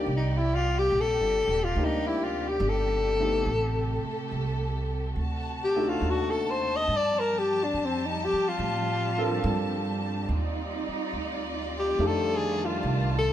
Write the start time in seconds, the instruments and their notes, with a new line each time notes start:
Already playing: string section G4 D5
0.06 upright bass C2, string section C3 G3
0.17 alto saxophone D#4
0.38 alto saxophone E4
0.55 alto saxophone F4
0.79 alto saxophone G4
0.91 upright bass A#1
1.00 alto saxophone A4
1.20 upright bass G1
1.48 upright bass D#1
1.64 alto saxophone F4
1.75 upright bass D2, grand piano A#3 C4 D4 D#4 G4
1.85 alto saxophone D#4
2.07 alto saxophone E4
2.24 alto saxophone F4
2.48 alto saxophone G4
2.60 upright bass G1
2.69 alto saxophone A4
3.20 grand piano A3 B3 C4 D#4 G4
3.46 upright bass A1, string section A3 A4
4.05 muted upright bass stroke
4.31 upright bass C2
5.16 upright bass D2, string section D3 F#4 A5
5.64 alto saxophone G4
5.76 grand piano A3 C4 D4 D#4 F#4
5.88 alto saxophone F4
6.01 upright bass D#2
6.10 alto saxophone F#4
6.30 alto saxophone A4
6.50 alto saxophone C5
6.76 alto saxophone D#5
6.85 upright bass G2, string section F3 G3 C4 G4
6.96 alto saxophone D5
7.19 alto saxophone A#4
7.39 alto saxophone G4
7.64 alto saxophone D4
7.73 upright bass F2
7.85 alto saxophone C4
8.06 alto saxophone D#4
8.25 alto saxophone G4
8.33 muted upright bass stroke
8.48 alto saxophone F4
8.59 upright bass A2
9.18 grand piano C4 D4 F4 A4 A#4
9.44 upright bass G2
10.29 upright bass D#2, string section D#4 F4 D5
10.88 muted upright bass stroke
11.13 upright bass D2
11.79 alto saxophone G4
11.97 upright bass F2, string section D#3 G3 A5, grand piano A3 C4 D4 D#4 G4
12.06 alto saxophone A4
12.36 alto saxophone G#4
12.64 alto saxophone F4
12.83 upright bass C2
13.18 alto saxophone A4